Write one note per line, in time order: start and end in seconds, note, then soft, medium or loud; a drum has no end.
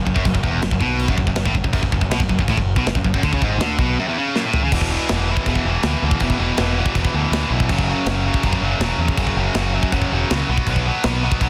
0.06 0.15 F#1 medium
0.06 0.14 F#2 medium
0.06 kick medium
0.15 0.24 F#1 medium
0.15 0.24 F#2 loud
0.15 kick medium
0.25 0.34 F#1 medium
0.25 0.33 F#2 medium
0.25 kick loud
0.25 china medium
0.34 0.43 F#1 medium
0.34 0.43 F#2 medium
0.34 kick medium
0.43 0.61 E1 loud
0.43 0.61 E2 loud
0.43 kick medium
0.62 0.71 F#1 medium
0.62 0.72 F#2 medium
0.62 snare loud
0.62 china medium
0.71 0.80 F#1 medium
0.71 0.81 F#2 medium
0.71 kick loud
0.80 1.07 B1 loud
0.80 1.08 B2 loud
0.80 kick medium
0.99 china medium
1.08 1.17 F#1 medium
1.08 1.17 F#2 loud
1.08 kick loud
1.18 1.26 F#1 medium
1.18 1.26 F#2 medium
1.18 kick medium
1.27 1.36 F#1 medium
1.27 1.35 F#2 medium
1.27 kick medium
1.35 1.45 F#1 medium
1.35 1.46 F#2 medium
1.35 snare loud
1.35 china medium
1.45 1.54 A1 loud
1.45 1.54 A2 loud
1.45 kick loud
1.54 1.64 F#1 medium
1.54 1.63 F#2 medium
1.54 kick medium
1.64 1.73 F#1 medium
1.64 1.72 F#2 medium
1.64 kick medium
1.73 1.82 F#1 medium
1.73 1.81 F#2 loud
1.73 kick loud
1.73 china medium
1.82 1.91 F#1 medium
1.82 1.91 F#2 medium
1.82 kick medium
1.92 2.01 F#1 medium
1.92 2.00 F#2 medium
1.92 kick medium
2.01 2.09 F#1 medium
2.01 2.11 F#2 medium
2.01 kick medium
2.10 2.19 B1 loud
2.10 2.20 B2 loud
2.10 snare loud
2.10 china medium
2.20 2.29 F#1 medium
2.20 2.28 F#2 medium
2.20 kick loud
2.29 2.38 F#1 medium
2.29 2.39 F#2 medium
2.29 kick medium
2.38 2.47 F#1 medium
2.38 2.49 F#2 medium
2.38 kick medium
2.48 2.57 A1 medium
2.48 2.58 A2 loud
2.48 kick loud
2.48 china medium
2.57 2.75 F#1 medium
2.57 2.73 F#2 medium
2.57 kick medium
2.76 2.85 B1 loud
2.76 2.86 B2 loud
2.76 kick loud
2.85 2.94 F#1 medium
2.85 2.95 F#2 medium
2.85 snare loud
2.85 china medium
2.95 3.04 F#1 medium
2.95 3.04 F#2 medium
2.95 kick medium
3.04 3.13 F#1 medium
3.04 3.14 F#2 medium
3.04 kick medium
3.14 3.23 F#1 medium
3.14 3.23 F#2 medium
3.14 kick loud
3.23 3.32 D2 medium
3.23 3.32 D3 loud
3.23 kick loud
3.23 china medium
3.32 3.41 C#2 medium
3.32 3.41 C#3 loud
3.32 kick medium
3.42 3.58 G#1 medium
3.42 3.60 G#2 loud
3.42 kick medium
3.58 3.76 D2 loud
3.58 3.78 D3 loud
3.58 snare loud
3.58 china medium
3.78 3.96 B1 medium
3.78 3.97 B2 medium
3.78 kick loud
3.99 4.07 F#2 loud
4.08 4.16 E2 loud
4.18 4.35 C#3 medium
4.35 4.44 F#2 loud
4.35 snare medium
4.44 4.62 A2 loud
4.53 floor tom loud
4.63 4.72 C#3 loud
4.72 4.95 E1 medium
4.72 4.91 E2 medium
4.72 4.92 B2 loud
4.72 4.93 E3 medium
4.72 kick loud
4.72 crash loud
4.72 crash medium
4.81 kick medium
4.92 5.10 E2 medium
4.92 5.09 B2 medium
4.92 5.11 E3 loud
5.09 5.33 E1 loud
5.09 5.29 E2 medium
5.09 5.29 B2 medium
5.09 5.30 E3 medium
5.09 snare loud
5.09 crash medium
5.29 5.47 E2 medium
5.29 5.47 B2 medium
5.29 5.48 E3 medium
5.37 kick medium
5.46 5.57 E1 medium
5.46 5.65 E2 loud
5.46 5.65 B2 loud
5.46 5.66 E3 loud
5.46 kick loud
5.46 crash medium
5.55 kick medium
5.65 5.76 E1 medium
5.65 5.84 E2 medium
5.65 5.85 B2 medium
5.65 5.85 E3 loud
5.83 5.95 D2 medium
5.83 6.03 E2 medium
5.83 6.04 B2 loud
5.83 6.04 E3 loud
5.83 snare loud
5.83 crash medium
6.03 6.14 D2 loud
6.03 6.22 E2 medium
6.03 6.23 B2 medium
6.03 6.23 E3 medium
6.11 kick loud
6.20 6.32 E1 loud
6.20 6.39 E2 loud
6.20 kick loud
6.20 crash medium
6.24 6.39 B2 loud
6.24 6.39 E3 loud
6.30 kick medium
6.40 6.51 E1 medium
6.40 6.57 E2 medium
6.40 6.58 B2 loud
6.40 6.59 E3 loud
6.57 6.80 E1 medium
6.57 6.76 E2 medium
6.57 6.77 B2 medium
6.57 6.77 E3 loud
6.57 snare loud
6.57 crash medium
6.78 6.95 E2 medium
6.78 6.95 B2 medium
6.78 6.95 E3 loud
6.86 kick medium
6.95 7.07 E1 medium
6.95 7.14 E2 medium
6.95 7.14 B2 loud
6.95 7.14 E3 loud
6.95 kick loud
6.95 crash medium
7.05 kick medium
7.14 7.25 D2 medium
7.14 7.33 E2 medium
7.14 7.33 B2 medium
7.14 7.33 E3 medium
7.32 7.43 D2 loud
7.32 7.51 E2 medium
7.32 7.51 B2 medium
7.32 7.52 E3 loud
7.32 snare loud
7.32 crash medium
7.50 7.71 B1 medium
7.50 7.69 E2 medium
7.50 7.69 B2 medium
7.50 7.69 E3 medium
7.60 kick medium
7.69 7.92 F#1 loud
7.69 7.88 F#2 loud
7.69 7.88 C#3 loud
7.69 7.89 F#3 loud
7.69 kick loud
7.69 crash medium
7.78 kick medium
7.89 8.07 F#2 medium
7.89 8.06 C#3 loud
7.89 8.08 F#3 loud
8.06 8.29 F#1 loud
8.06 8.24 F#2 medium
8.06 8.25 C#3 medium
8.06 8.27 F#3 loud
8.06 snare loud
8.06 crash medium
8.26 8.43 F#2 medium
8.26 8.43 C#3 medium
8.26 8.45 F#3 medium
8.34 kick medium
8.43 8.55 F#1 medium
8.43 8.62 F#2 loud
8.43 8.62 C#3 loud
8.43 8.64 F#3 loud
8.43 kick loud
8.43 crash medium
8.53 kick medium
8.61 8.73 F#1 medium
8.61 8.81 F#2 medium
8.61 8.81 C#3 medium
8.61 8.83 F#3 medium
8.80 8.91 E1 loud
8.80 8.99 F#2 medium
8.80 8.99 C#3 loud
8.80 9.01 F#3 loud
8.80 snare loud
8.80 crash medium
8.98 9.10 E2 medium
8.98 9.17 F#2 medium
8.98 9.18 C#3 medium
8.98 9.19 F#3 loud
9.08 kick loud
9.17 9.29 F#1 loud
9.17 9.37 F#2 medium
9.17 9.38 C#3 loud
9.17 9.39 F#3 medium
9.17 kick loud
9.17 crash medium
9.27 kick medium
9.37 9.48 F#1 medium
9.37 9.55 F#2 medium
9.37 9.55 C#3 medium
9.37 9.57 F#3 medium
9.54 9.77 F#1 medium
9.54 9.73 F#2 medium
9.54 9.74 C#3 loud
9.54 9.75 F#3 loud
9.54 snare loud
9.54 crash medium
9.74 9.92 F#2 medium
9.74 9.93 C#3 medium
9.74 9.94 F#3 loud
9.83 kick medium
9.92 10.04 F#1 medium
9.92 10.11 F#2 loud
9.92 10.12 C#3 loud
9.92 10.13 F#3 loud
9.92 kick loud
9.92 crash medium
10.02 kick medium
10.12 10.23 E1 medium
10.12 10.29 F#2 medium
10.12 10.30 C#3 medium
10.12 10.32 F#3 loud
10.30 10.42 C#2 loud
10.30 10.48 F#2 medium
10.30 10.48 C#3 loud
10.30 10.50 F#3 loud
10.30 snare loud
10.30 crash medium
10.49 10.60 B1 medium
10.49 10.67 B2 loud
10.49 10.69 F#3 loud
10.49 10.69 B3 loud
10.58 kick medium
10.67 10.89 B1 medium
10.67 10.86 B2 medium
10.67 10.87 F#3 medium
10.67 10.87 B3 loud
10.67 kick loud
10.67 crash medium
10.76 kick medium
10.87 11.04 B2 medium
10.87 11.05 F#3 medium
10.87 11.05 B3 medium
11.03 11.27 B1 loud
11.03 11.23 B2 medium
11.03 11.24 F#3 medium
11.03 11.24 B3 loud
11.03 snare loud
11.03 crash medium
11.24 11.40 B2 medium
11.24 11.41 F#3 medium
11.24 11.42 B3 medium
11.32 kick medium
11.41 11.49 B1 medium
11.41 11.49 B2 loud
11.41 11.49 F#3 medium
11.41 11.49 B3 loud
11.41 kick loud
11.41 crash medium